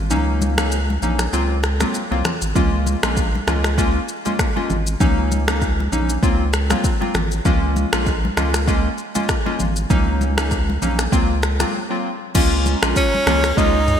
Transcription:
Already playing: sub bass G#1
0.10 sub bass C#2, synth keys F#3 A#3 C#4 D#4, low conga, shaker
0.42 high conga, shaker
0.58 synth keys F#3 A#3 C#4 D#4, finger snap, cross-stick, shaker
0.72 shaker
0.90 high conga
1.02 sub bass A#1, synth keys F#3 A#3 C#4 D#4, low conga, shaker
1.19 finger snap, cross-stick, shaker
1.33 sub bass C#2, synth keys F#3 A#3 C4 F4, shaker
1.63 finger snap, cross-stick, shaker
1.80 synth keys F#3 A#3 C4 F4, finger snap, cross-stick, high conga, shaker
1.94 shaker
2.11 sub bass C2, synth keys F#3 A#3 C4 F4, high conga
2.25 finger snap, cross-stick, low conga, shaker
2.42 sub bass G#1, shaker
2.55 sub bass C#2, synth keys G#3 A#3 C#4 F4, kick, low conga, shaker
2.87 high conga, shaker
3.03 sub bass A#1, synth keys G#3 A#3 C#4 F4, finger snap, cross-stick, shaker
3.17 kick, shaker
3.35 high conga
3.47 sub bass C#2, synth keys G#3 A#3 C#4 F4, finger snap, cross-stick, low conga, shaker
3.64 finger snap, cross-stick, shaker
3.78 synth keys G#3 A#3 C#4 F4, kick, shaker
4.08 shaker
4.25 synth keys G#3 A#3 C#4 F4, high conga, shaker
4.39 finger snap, kick, cross-stick, shaker
4.56 synth keys G#3 A#3 C#4 F4, high conga
4.70 sub bass G#1, low conga, shaker
4.87 shaker
5.00 sub bass C#2, synth keys F#3 A#3 C#4 D#4, kick, low conga, shaker
5.32 high conga, shaker
5.48 synth keys F#3 A#3 C#4 D#4, finger snap, cross-stick, shaker
5.62 kick, shaker
5.80 high conga
5.92 sub bass A#1, synth keys F#3 A#3 C#4 D#4, low conga, shaker
6.09 shaker
6.23 sub bass C#2, synth keys F#3 A#3 C4 F4, kick, shaker
6.53 finger snap, cross-stick, shaker
6.70 synth keys F#3 A#3 C4 F4, finger snap, cross-stick, high conga, shaker
6.84 kick, shaker
7.01 synth keys F#3 A#3 C4 F4, high conga
7.15 sub bass G#1, finger snap, cross-stick, low conga, shaker
7.31 shaker
7.45 sub bass C#2, synth keys G#3 A#3 C#4 F4, kick, low conga, shaker
7.76 high conga, shaker
7.93 sub bass A#1, synth keys G#3 A#3 C#4 F4, finger snap, cross-stick, shaker
8.06 kick, shaker
8.25 high conga
8.37 sub bass C#2, synth keys G#3 A#3 C#4 F4, finger snap, cross-stick, low conga, shaker
8.54 finger snap, cross-stick, shaker
8.67 synth keys G#3 A#3 C#4 F4, kick, shaker
8.98 shaker
9.15 synth keys G#3 A#3 C#4 F4, high conga, shaker
9.29 finger snap, kick, cross-stick, shaker
9.45 synth keys G#3 A#3 C#4 F4, high conga
9.60 sub bass G#1, low conga, shaker
9.76 shaker
9.90 sub bass C#2, synth keys F#3 A#3 C#4 D#4, kick, low conga, shaker
10.21 high conga, shaker
10.37 synth keys F#3 A#3 C#4 D#4, finger snap, cross-stick, shaker
10.51 kick, shaker
10.70 high conga
10.82 sub bass A#1, synth keys F#3 A#3 C#4 D#4, low conga, shaker
10.99 finger snap, cross-stick, shaker
11.12 sub bass C#2, synth keys F#3 A#3 C4 F4, kick, shaker
11.43 finger snap, cross-stick, shaker
11.59 synth keys F#3 A#3 C4 F4, finger snap, cross-stick, high conga, shaker
11.90 synth keys F#3 A#3 C4 F4
12.34 sub bass C#2, synth keys G#3 A#3 C#4 F4, analog synth pad F4 C#5 A#5, kick, crash, low conga, shaker
12.66 high conga, shaker
12.82 sub bass A#1, synth keys G#3 A#3 C#4 F4, finger snap, cross-stick, shaker
12.96 tenor saxophone C#4, kick, shaker
13.15 high conga
13.27 sub bass C#2, synth keys G#3 A#3 C#4 F4, analog synth pad G#4, finger snap, cross-stick, low conga, shaker
13.44 finger snap, cross-stick, shaker
13.57 sub bass C#2, synth keys G#3 A#3 C#4 F4, tenor saxophone D#4, kick, shaker
13.88 mid tom, shaker

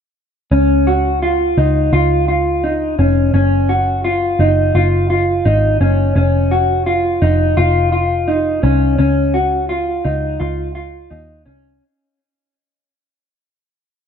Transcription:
0.51 picked electric bass C#2, clean electric guitar C#4
0.87 clean electric guitar F#4
1.22 clean electric guitar F4
1.58 picked electric bass C#2, clean electric guitar D#4
1.93 picked electric bass C#2, clean electric guitar F4
2.28 clean electric guitar F4
2.64 clean electric guitar D#4
2.99 picked electric bass F1, clean electric guitar C#4
3.34 picked electric bass F#1, clean electric guitar C#4
3.69 clean electric guitar F#4
4.04 clean electric guitar F4
4.39 picked electric bass F#1, clean electric guitar D#4
4.75 picked electric bass F#1, clean electric guitar F4
5.10 clean electric guitar F4
5.45 picked electric bass G#1, clean electric guitar D#4
5.81 picked electric bass F#1, clean electric guitar C#4
6.16 picked electric bass F1, clean electric guitar C#4
6.51 clean electric guitar F#4
6.86 clean electric guitar F4
7.22 picked electric bass F1, clean electric guitar D#4
7.57 picked electric bass F1, clean electric guitar F4
7.92 clean electric guitar F4
8.28 clean electric guitar D#4
8.63 picked electric bass C2, clean electric guitar C#4
8.98 picked electric bass C#2, clean electric guitar C#4
9.34 clean electric guitar F#4
9.69 clean electric guitar F4
10.04 picked electric bass C#2, clean electric guitar D#4
10.40 picked electric bass C#2, clean electric guitar F4
10.75 clean electric guitar F4
11.10 picked electric bass D#2, clean electric guitar D#4
11.46 picked electric bass C2, clean electric guitar C#4

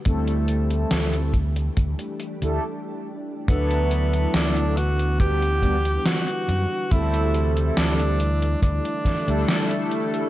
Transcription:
Already playing: string machine G3
0.04 fingered electric bass D2, string machine E3 A3 C4 G4, analog polysynth G3 A3 C4 E4 A4, kick, closed hi-hat
0.28 closed hi-hat
0.48 closed hi-hat
0.70 closed hi-hat
0.91 fingered electric bass D2, snare, closed hi-hat
1.13 closed hi-hat
1.34 string machine D4 G4, kick, closed hi-hat
1.56 closed hi-hat
1.77 fingered electric bass D2, kick, closed hi-hat
1.99 closed hi-hat
2.20 closed hi-hat
2.41 fingered electric bass D2, analog polysynth G3 A3 D4 E4 A4, closed hi-hat
3.47 fingered electric bass D2, string machine D3 E3 A3 B3 E4, analog polysynth F#3 B3 D4 E4 A4, tenor saxophone B3, kick, closed hi-hat
3.71 closed hi-hat
3.91 closed hi-hat
4.13 closed hi-hat
4.34 fingered electric bass D2, tenor saxophone D4, snare, closed hi-hat
4.56 closed hi-hat
4.77 string machine G3 F#5, tenor saxophone F#4, closed hi-hat
4.99 closed hi-hat
5.19 analog polysynth G3 B3 D4 F#4 B4, tenor saxophone G4, kick, closed hi-hat
5.42 closed hi-hat
5.62 analog polysynth G3 B3 D4 F#4 D5, kick, closed hi-hat
5.85 closed hi-hat
6.06 tenor saxophone F#4, snare, closed hi-hat
6.28 closed hi-hat
6.48 fingered electric bass F#2, closed hi-hat
6.90 fingered electric bass D2, string machine C3 E3 A3 E4, analog polysynth G3 A3 C4 E4 A4, tenor saxophone E4, kick, closed hi-hat
7.14 closed hi-hat
7.34 closed hi-hat
7.57 closed hi-hat
7.77 fingered electric bass D2, tenor saxophone D4, snare, closed hi-hat
7.99 closed hi-hat
8.20 string machine D3 A3, closed hi-hat
8.42 closed hi-hat
8.62 fingered electric bass D2, tenor saxophone D4, kick, closed hi-hat
8.85 closed hi-hat
9.05 kick, snare, closed hi-hat
9.26 fingered electric bass D2, analog polysynth G3 A3 D4 E4 A4, closed hi-hat
9.48 snare, closed hi-hat
9.71 closed hi-hat
9.91 closed hi-hat
10.14 closed hi-hat

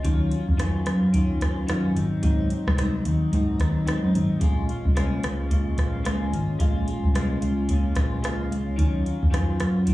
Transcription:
0.03 picked electric bass D#2, clean electric guitar D#3 F#3 C#4 F4, kick, closed hi-hat
0.31 clean electric guitar F#3 C#4 F4, closed hi-hat
0.48 picked electric bass F2, kick
0.58 clean electric guitar D#3 F#3 C#4 F4, cross-stick, closed hi-hat
0.85 picked electric bass F#2, clean electric guitar F#3 C#4 F4, cross-stick, closed hi-hat
1.13 clean electric guitar D#3 F#3 C#4 F4, kick, closed hi-hat
1.41 picked electric bass D#2, clean electric guitar F#3 C#4 F4, kick, cross-stick, closed hi-hat
1.67 picked electric bass F#2, clean electric guitar D#3 F#3 C#4 F4, cross-stick, closed hi-hat
1.95 picked electric bass G#1, clean electric guitar F#3 C4 D#4, closed hi-hat
2.23 clean electric guitar G#2 F#3 C4 D#4, kick, closed hi-hat
2.49 clean electric guitar F#3 C4 D#4, closed hi-hat
2.67 picked electric bass C2, kick, cross-stick
2.76 clean electric guitar G#2 F#3 C4 D#4, cross-stick, closed hi-hat
3.05 picked electric bass D#2, clean electric guitar F#3 C4 D#4, closed hi-hat
3.32 clean electric guitar G#2 F#3 C4 D#4, picked electric bass G#2, kick, closed hi-hat
3.58 picked electric bass D#2, clean electric guitar F#3 C4 D#4, kick, cross-stick, closed hi-hat
3.85 clean electric guitar G#2 F#3 C4 D#4, cross-stick, closed hi-hat
4.04 picked electric bass F#2
4.13 picked electric bass G#1, clean electric guitar F#3 C4 D#4, closed hi-hat
4.40 picked electric bass A#1, clean electric guitar A#2 G#3 C#4 F4, kick, closed hi-hat
4.67 clean electric guitar G#3 C#4 F4, closed hi-hat
4.85 picked electric bass C2, kick
4.95 clean electric guitar A#2 G#3 C#4 F4, cross-stick, closed hi-hat
5.23 picked electric bass C#2, clean electric guitar G#3 C#4 F4, cross-stick, closed hi-hat
5.49 clean electric guitar A#2 G#3 C#4 F4, kick, closed hi-hat
5.77 picked electric bass A#1, clean electric guitar G#3 C#4 F4, kick, cross-stick, closed hi-hat
6.03 picked electric bass C#2, clean electric guitar A#2 G#3 C#4 F4, cross-stick, closed hi-hat
6.31 picked electric bass G#1, clean electric guitar G#3 C#4 F4, closed hi-hat
6.59 picked electric bass A#1, clean electric guitar A#2 G#3 C#4 F4, kick, closed hi-hat
6.85 clean electric guitar G#3 C#4 F4, closed hi-hat
7.04 picked electric bass C2, kick
7.14 clean electric guitar A#2 G#3 C#4 F4, cross-stick, closed hi-hat
7.41 picked electric bass C#2, clean electric guitar G#3 C#4 F4, closed hi-hat
7.68 clean electric guitar A#2 G#3 C#4 F4, kick, closed hi-hat
7.95 picked electric bass A#1, clean electric guitar G#3 C#4 F4, kick, cross-stick, closed hi-hat
8.22 picked electric bass C#2, clean electric guitar A#2 G#3 C#4 F4, cross-stick, closed hi-hat
8.50 picked electric bass C#2, clean electric guitar C#4 F4, closed hi-hat
8.76 picked electric bass D#2, clean electric guitar D#3 F#3 C#4 F4, kick, closed hi-hat
9.04 clean electric guitar F#3 C#4 F4, closed hi-hat
9.22 picked electric bass F2, kick
9.30 clean electric guitar D#3 F#3 C#4 F4, cross-stick, closed hi-hat
9.58 picked electric bass F#2, clean electric guitar F#3 C#4 F4, cross-stick, closed hi-hat
9.86 clean electric guitar D#3 F#3 C#4 F4, kick, closed hi-hat

